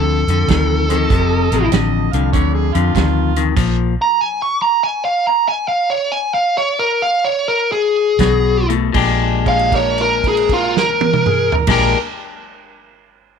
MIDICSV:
0, 0, Header, 1, 6, 480
1, 0, Start_track
1, 0, Tempo, 617920
1, 853, Time_signature, 4, 2, 24, 8
1, 3735, Tempo, 653595
1, 5175, Tempo, 708383
1, 6135, Tempo, 754717
1, 6615, Tempo, 773196
1, 9378, End_track
2, 0, Start_track
2, 0, Title_t, "Lead electric guitar"
2, 0, Program_c, 0, 29
2, 0, Note_on_c, 0, 69, 91
2, 1309, Note_off_c, 0, 69, 0
2, 3120, Note_on_c, 0, 82, 104
2, 3261, Note_off_c, 0, 82, 0
2, 3270, Note_on_c, 0, 80, 90
2, 3417, Note_off_c, 0, 80, 0
2, 3435, Note_on_c, 0, 85, 74
2, 3581, Note_off_c, 0, 85, 0
2, 3591, Note_on_c, 0, 82, 104
2, 3740, Note_off_c, 0, 82, 0
2, 3755, Note_on_c, 0, 80, 97
2, 3896, Note_off_c, 0, 80, 0
2, 3911, Note_on_c, 0, 77, 98
2, 4053, Note_off_c, 0, 77, 0
2, 4074, Note_on_c, 0, 82, 82
2, 4214, Note_off_c, 0, 82, 0
2, 4233, Note_on_c, 0, 80, 93
2, 4373, Note_off_c, 0, 80, 0
2, 4378, Note_on_c, 0, 77, 89
2, 4525, Note_off_c, 0, 77, 0
2, 4537, Note_on_c, 0, 73, 95
2, 4686, Note_off_c, 0, 73, 0
2, 4696, Note_on_c, 0, 80, 86
2, 4848, Note_off_c, 0, 80, 0
2, 4863, Note_on_c, 0, 77, 104
2, 5014, Note_off_c, 0, 77, 0
2, 5034, Note_on_c, 0, 73, 89
2, 5183, Note_off_c, 0, 73, 0
2, 5192, Note_on_c, 0, 70, 92
2, 5335, Note_off_c, 0, 70, 0
2, 5347, Note_on_c, 0, 77, 84
2, 5492, Note_off_c, 0, 77, 0
2, 5498, Note_on_c, 0, 73, 86
2, 5647, Note_off_c, 0, 73, 0
2, 5658, Note_on_c, 0, 70, 90
2, 5809, Note_off_c, 0, 70, 0
2, 5820, Note_on_c, 0, 68, 107
2, 6442, Note_off_c, 0, 68, 0
2, 6953, Note_on_c, 0, 77, 104
2, 7100, Note_off_c, 0, 77, 0
2, 7120, Note_on_c, 0, 73, 84
2, 7263, Note_off_c, 0, 73, 0
2, 7285, Note_on_c, 0, 70, 77
2, 7426, Note_off_c, 0, 70, 0
2, 7448, Note_on_c, 0, 68, 84
2, 7587, Note_off_c, 0, 68, 0
2, 7605, Note_on_c, 0, 65, 81
2, 7746, Note_off_c, 0, 65, 0
2, 7755, Note_on_c, 0, 70, 88
2, 8230, Note_off_c, 0, 70, 0
2, 8334, Note_on_c, 0, 70, 84
2, 8493, Note_off_c, 0, 70, 0
2, 9378, End_track
3, 0, Start_track
3, 0, Title_t, "Harmonica"
3, 0, Program_c, 1, 22
3, 694, Note_on_c, 1, 68, 70
3, 694, Note_on_c, 1, 72, 70
3, 694, Note_on_c, 1, 75, 100
3, 745, Note_off_c, 1, 72, 0
3, 752, Note_off_c, 1, 68, 0
3, 1650, Note_on_c, 1, 77, 82
3, 1662, Note_off_c, 1, 75, 0
3, 1803, Note_off_c, 1, 77, 0
3, 1808, Note_on_c, 1, 73, 83
3, 1973, Note_on_c, 1, 68, 86
3, 1984, Note_off_c, 1, 73, 0
3, 2129, Note_on_c, 1, 65, 100
3, 2140, Note_off_c, 1, 68, 0
3, 2672, Note_off_c, 1, 65, 0
3, 6939, Note_on_c, 1, 61, 64
3, 6939, Note_on_c, 1, 65, 64
3, 6939, Note_on_c, 1, 68, 92
3, 6988, Note_off_c, 1, 65, 0
3, 6990, Note_off_c, 1, 61, 0
3, 7093, Note_off_c, 1, 68, 0
3, 7101, Note_on_c, 1, 63, 63
3, 7101, Note_on_c, 1, 67, 63
3, 7101, Note_on_c, 1, 70, 90
3, 7140, Note_off_c, 1, 67, 0
3, 7154, Note_off_c, 1, 63, 0
3, 8033, Note_off_c, 1, 70, 0
3, 8057, Note_on_c, 1, 68, 89
3, 8220, Note_on_c, 1, 70, 98
3, 8230, Note_off_c, 1, 68, 0
3, 8461, Note_off_c, 1, 70, 0
3, 9378, End_track
4, 0, Start_track
4, 0, Title_t, "Clean electric guitar"
4, 0, Program_c, 2, 27
4, 0, Note_on_c, 2, 41, 72
4, 0, Note_on_c, 2, 50, 87
4, 188, Note_off_c, 2, 41, 0
4, 191, Note_off_c, 2, 50, 0
4, 227, Note_on_c, 2, 41, 70
4, 232, Note_on_c, 2, 50, 80
4, 364, Note_off_c, 2, 41, 0
4, 367, Note_off_c, 2, 50, 0
4, 384, Note_on_c, 2, 41, 84
4, 391, Note_on_c, 2, 51, 88
4, 667, Note_off_c, 2, 41, 0
4, 671, Note_off_c, 2, 51, 0
4, 701, Note_on_c, 2, 41, 82
4, 706, Note_on_c, 2, 51, 83
4, 840, Note_off_c, 2, 41, 0
4, 843, Note_off_c, 2, 51, 0
4, 867, Note_on_c, 2, 48, 80
4, 868, Note_on_c, 2, 41, 75
4, 1148, Note_off_c, 2, 48, 0
4, 1149, Note_off_c, 2, 41, 0
4, 1188, Note_on_c, 2, 41, 72
4, 1194, Note_on_c, 2, 48, 77
4, 1323, Note_off_c, 2, 41, 0
4, 1326, Note_off_c, 2, 48, 0
4, 1342, Note_on_c, 2, 41, 91
4, 1348, Note_on_c, 2, 50, 90
4, 1625, Note_off_c, 2, 41, 0
4, 1628, Note_off_c, 2, 50, 0
4, 1663, Note_on_c, 2, 41, 74
4, 1664, Note_on_c, 2, 50, 93
4, 1800, Note_off_c, 2, 41, 0
4, 1801, Note_off_c, 2, 50, 0
4, 1820, Note_on_c, 2, 41, 86
4, 1823, Note_on_c, 2, 50, 86
4, 2103, Note_off_c, 2, 41, 0
4, 2105, Note_off_c, 2, 50, 0
4, 2134, Note_on_c, 2, 41, 75
4, 2139, Note_on_c, 2, 50, 81
4, 2275, Note_off_c, 2, 41, 0
4, 2277, Note_off_c, 2, 50, 0
4, 2296, Note_on_c, 2, 41, 90
4, 2301, Note_on_c, 2, 51, 88
4, 2581, Note_off_c, 2, 41, 0
4, 2584, Note_off_c, 2, 51, 0
4, 2616, Note_on_c, 2, 41, 70
4, 2617, Note_on_c, 2, 51, 86
4, 2756, Note_off_c, 2, 41, 0
4, 2756, Note_off_c, 2, 51, 0
4, 2770, Note_on_c, 2, 46, 73
4, 2774, Note_on_c, 2, 53, 96
4, 3058, Note_off_c, 2, 46, 0
4, 3060, Note_off_c, 2, 53, 0
4, 6144, Note_on_c, 2, 47, 80
4, 6145, Note_on_c, 2, 54, 85
4, 6426, Note_off_c, 2, 47, 0
4, 6427, Note_off_c, 2, 54, 0
4, 6456, Note_on_c, 2, 47, 72
4, 6460, Note_on_c, 2, 57, 80
4, 6600, Note_off_c, 2, 47, 0
4, 6602, Note_off_c, 2, 57, 0
4, 6606, Note_on_c, 2, 46, 85
4, 6617, Note_on_c, 2, 56, 87
4, 6627, Note_on_c, 2, 62, 92
4, 6631, Note_on_c, 2, 67, 88
4, 8310, Note_off_c, 2, 46, 0
4, 8312, Note_on_c, 2, 46, 104
4, 8318, Note_off_c, 2, 56, 0
4, 8320, Note_on_c, 2, 56, 106
4, 8327, Note_off_c, 2, 62, 0
4, 8329, Note_on_c, 2, 62, 102
4, 8334, Note_off_c, 2, 67, 0
4, 8336, Note_on_c, 2, 67, 105
4, 8487, Note_off_c, 2, 46, 0
4, 8492, Note_off_c, 2, 56, 0
4, 8496, Note_off_c, 2, 62, 0
4, 8499, Note_off_c, 2, 67, 0
4, 9378, End_track
5, 0, Start_track
5, 0, Title_t, "Fingered electric bass"
5, 0, Program_c, 3, 33
5, 0, Note_on_c, 3, 38, 88
5, 194, Note_off_c, 3, 38, 0
5, 213, Note_on_c, 3, 41, 89
5, 362, Note_off_c, 3, 41, 0
5, 372, Note_on_c, 3, 38, 86
5, 821, Note_off_c, 3, 38, 0
5, 854, Note_on_c, 3, 29, 88
5, 1152, Note_off_c, 3, 29, 0
5, 1177, Note_on_c, 3, 33, 94
5, 1323, Note_off_c, 3, 33, 0
5, 1334, Note_on_c, 3, 33, 85
5, 1631, Note_off_c, 3, 33, 0
5, 1654, Note_on_c, 3, 36, 88
5, 1801, Note_off_c, 3, 36, 0
5, 1812, Note_on_c, 3, 38, 95
5, 2110, Note_off_c, 3, 38, 0
5, 2136, Note_on_c, 3, 41, 89
5, 2282, Note_off_c, 3, 41, 0
5, 2289, Note_on_c, 3, 38, 91
5, 2737, Note_off_c, 3, 38, 0
5, 2766, Note_on_c, 3, 34, 91
5, 3067, Note_off_c, 3, 34, 0
5, 6136, Note_on_c, 3, 35, 86
5, 6591, Note_off_c, 3, 35, 0
5, 6616, Note_on_c, 3, 34, 85
5, 8210, Note_off_c, 3, 34, 0
5, 8310, Note_on_c, 3, 34, 86
5, 8474, Note_off_c, 3, 34, 0
5, 9378, End_track
6, 0, Start_track
6, 0, Title_t, "Drums"
6, 218, Note_on_c, 9, 42, 56
6, 296, Note_off_c, 9, 42, 0
6, 376, Note_on_c, 9, 36, 76
6, 376, Note_on_c, 9, 42, 75
6, 389, Note_on_c, 9, 38, 107
6, 453, Note_off_c, 9, 42, 0
6, 454, Note_off_c, 9, 36, 0
6, 467, Note_off_c, 9, 38, 0
6, 698, Note_on_c, 9, 42, 59
6, 775, Note_off_c, 9, 42, 0
6, 856, Note_on_c, 9, 36, 124
6, 856, Note_on_c, 9, 42, 93
6, 934, Note_off_c, 9, 36, 0
6, 934, Note_off_c, 9, 42, 0
6, 1179, Note_on_c, 9, 42, 68
6, 1257, Note_off_c, 9, 42, 0
6, 1334, Note_on_c, 9, 42, 92
6, 1348, Note_on_c, 9, 38, 122
6, 1412, Note_off_c, 9, 42, 0
6, 1426, Note_off_c, 9, 38, 0
6, 1656, Note_on_c, 9, 42, 60
6, 1733, Note_off_c, 9, 42, 0
6, 1813, Note_on_c, 9, 36, 116
6, 1816, Note_on_c, 9, 42, 94
6, 1891, Note_off_c, 9, 36, 0
6, 1893, Note_off_c, 9, 42, 0
6, 2135, Note_on_c, 9, 42, 60
6, 2213, Note_off_c, 9, 42, 0
6, 2291, Note_on_c, 9, 36, 76
6, 2295, Note_on_c, 9, 42, 75
6, 2309, Note_on_c, 9, 38, 112
6, 2369, Note_off_c, 9, 36, 0
6, 2372, Note_off_c, 9, 42, 0
6, 2386, Note_off_c, 9, 38, 0
6, 2612, Note_on_c, 9, 42, 62
6, 2690, Note_off_c, 9, 42, 0
6, 2770, Note_on_c, 9, 36, 124
6, 2772, Note_on_c, 9, 42, 92
6, 2772, Note_on_c, 9, 49, 81
6, 2848, Note_off_c, 9, 36, 0
6, 2849, Note_off_c, 9, 42, 0
6, 2849, Note_off_c, 9, 49, 0
6, 6137, Note_on_c, 9, 36, 80
6, 6138, Note_on_c, 9, 42, 83
6, 6149, Note_on_c, 9, 38, 102
6, 6201, Note_off_c, 9, 36, 0
6, 6201, Note_off_c, 9, 42, 0
6, 6213, Note_off_c, 9, 38, 0
6, 6460, Note_on_c, 9, 42, 58
6, 6524, Note_off_c, 9, 42, 0
6, 6618, Note_on_c, 9, 36, 110
6, 6618, Note_on_c, 9, 49, 93
6, 6680, Note_off_c, 9, 36, 0
6, 6680, Note_off_c, 9, 49, 0
6, 6939, Note_on_c, 9, 36, 66
6, 6940, Note_on_c, 9, 49, 45
6, 7001, Note_off_c, 9, 36, 0
6, 7002, Note_off_c, 9, 49, 0
6, 7020, Note_on_c, 9, 57, 38
6, 7082, Note_off_c, 9, 57, 0
6, 7099, Note_on_c, 9, 36, 68
6, 7100, Note_on_c, 9, 49, 54
6, 7161, Note_off_c, 9, 36, 0
6, 7162, Note_off_c, 9, 49, 0
6, 7260, Note_on_c, 9, 57, 50
6, 7322, Note_off_c, 9, 57, 0
6, 7420, Note_on_c, 9, 36, 60
6, 7422, Note_on_c, 9, 49, 44
6, 7482, Note_off_c, 9, 36, 0
6, 7484, Note_off_c, 9, 49, 0
6, 7502, Note_on_c, 9, 57, 52
6, 7564, Note_off_c, 9, 57, 0
6, 7578, Note_on_c, 9, 36, 63
6, 7580, Note_on_c, 9, 49, 53
6, 7640, Note_off_c, 9, 36, 0
6, 7642, Note_off_c, 9, 49, 0
6, 7749, Note_on_c, 9, 38, 92
6, 7811, Note_off_c, 9, 38, 0
6, 7899, Note_on_c, 9, 48, 96
6, 7961, Note_off_c, 9, 48, 0
6, 7977, Note_on_c, 9, 47, 91
6, 8039, Note_off_c, 9, 47, 0
6, 8056, Note_on_c, 9, 45, 100
6, 8118, Note_off_c, 9, 45, 0
6, 8217, Note_on_c, 9, 43, 96
6, 8279, Note_off_c, 9, 43, 0
6, 8309, Note_on_c, 9, 49, 103
6, 8313, Note_on_c, 9, 36, 100
6, 8320, Note_on_c, 9, 38, 96
6, 8371, Note_off_c, 9, 49, 0
6, 8375, Note_off_c, 9, 36, 0
6, 8383, Note_off_c, 9, 38, 0
6, 9378, End_track
0, 0, End_of_file